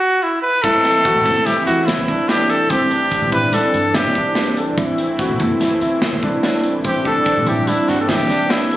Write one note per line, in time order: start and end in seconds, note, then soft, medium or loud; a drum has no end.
0.00 0.24 F#4 medium
0.23 0.42 E4 medium
0.42 0.64 B4 medium
0.62 1.17 C2 medium
0.62 2.66 E3 medium
0.62 2.66 A3 medium
0.62 2.67 C4 medium
0.62 2.67 E4 medium
0.62 0.92 E4 medium
0.62 1.48 A4 loud
0.62 kick medium
0.62 crash medium
0.85 snare soft
0.85 closed hi-hat medium
1.05 1.33 F#4 medium
1.05 kick loud
1.05 closed hi-hat medium
1.15 1.24 C3 medium
1.26 1.35 F#1 medium
1.26 kick medium
1.26 snare soft
1.26 closed hi-hat medium
1.46 1.64 C2 medium
1.46 1.61 E4 medium
1.46 1.65 G4 medium
1.46 closed hi-hat medium
1.66 1.85 E2 medium
1.66 1.96 E4 medium
1.66 1.88 F#4 medium
1.66 closed hi-hat medium
1.87 1.97 C2 medium
1.87 2.30 E4 medium
1.87 snare loud
1.87 closed hi-hat medium
1.98 2.07 C3 medium
2.08 2.62 C2 medium
2.08 2.23 D4 medium
2.08 kick medium
2.08 closed hi-hat medium
2.29 2.58 D4 medium
2.29 2.51 G4 medium
2.29 snare medium
2.29 closed hi-hat medium
2.49 2.72 A4 medium
2.49 closed hi-hat medium
2.69 3.23 C2 medium
2.69 4.73 E3 medium
2.69 4.73 G3 medium
2.69 4.73 C4 medium
2.69 2.84 C4 medium
2.69 4.74 D4 medium
2.69 3.33 G4 medium
2.69 kick loud
2.69 closed hi-hat medium
2.91 3.20 D4 medium
2.91 closed hi-hat medium
3.11 kick loud
3.11 closed hi-hat medium
3.21 3.31 C3 medium
3.32 3.42 A1 medium
3.32 3.46 E4 medium
3.32 3.55 B4 medium
3.32 kick medium
3.32 closed hi-hat medium
3.52 3.71 C2 medium
3.52 3.82 D4 medium
3.52 3.97 A4 medium
3.52 closed hi-hat medium
3.73 3.92 G2 medium
3.73 closed hi-hat medium
3.94 4.03 C2 medium
3.94 4.09 E4 medium
3.94 4.57 G4 medium
3.94 snare loud
3.94 closed hi-hat medium
4.04 4.14 C3 medium
4.15 4.70 C2 medium
4.15 4.44 D4 medium
4.15 kick medium
4.15 closed hi-hat soft
4.35 snare loud
4.35 closed hi-hat medium
4.57 4.71 A4 medium
4.57 closed hi-hat medium
4.76 5.30 C2 medium
4.76 6.80 E3 medium
4.76 6.81 A3 medium
4.76 6.81 C4 medium
4.76 5.06 E4 medium
4.76 6.81 E4 medium
4.76 kick loud
4.76 closed hi-hat medium
4.98 closed hi-hat medium
5.19 5.48 F#4 medium
5.19 kick loud
5.19 snare soft
5.19 closed hi-hat medium
5.29 5.38 C3 medium
5.39 5.49 F#1 loud
5.39 kick medium
5.39 closed hi-hat medium
5.60 5.78 C2 medium
5.60 5.75 E4 medium
5.60 snare soft
5.60 closed hi-hat medium
5.81 5.99 E2 medium
5.81 6.10 E4 medium
5.81 closed hi-hat medium
6.01 6.11 C2 medium
6.01 snare loud
6.01 closed hi-hat medium
6.12 6.21 C3 medium
6.23 6.77 C2 medium
6.23 6.38 D4 medium
6.23 kick medium
6.23 closed hi-hat medium
6.43 6.72 D4 medium
6.43 snare medium
6.43 closed hi-hat medium
6.64 closed hi-hat medium
6.83 7.38 C2 medium
6.83 8.77 E3 medium
6.83 8.77 G3 medium
6.83 8.77 C4 medium
6.83 6.99 C4 medium
6.83 8.77 D4 medium
6.83 7.05 G4 medium
6.83 kick loud
6.83 closed hi-hat medium
7.05 7.34 D4 medium
7.05 7.50 A4 medium
7.05 kick medium
7.05 closed hi-hat medium
7.26 kick medium
7.26 closed hi-hat medium
7.37 7.46 C3 medium
7.47 7.56 A1 loud
7.47 7.62 E4 medium
7.47 7.69 G4 medium
7.47 closed hi-hat medium
7.67 7.86 C2 medium
7.67 7.96 D4 medium
7.67 7.90 E4 medium
7.67 closed hi-hat medium
7.88 8.07 G2 medium
7.88 8.00 F#4 medium
7.88 snare soft
7.88 closed hi-hat medium
8.01 8.12 A4 medium
8.09 8.18 C2 medium
8.09 8.24 E4 medium
8.09 8.53 G4 medium
8.09 snare loud
8.09 closed hi-hat medium
8.19 8.28 C3 medium
8.29 8.77 C2 medium
8.29 8.58 D4 medium
8.29 snare soft
8.29 closed hi-hat medium
8.50 8.77 E4 medium
8.50 snare loud
8.50 closed hi-hat medium
8.71 8.77 A4 medium
8.71 closed hi-hat medium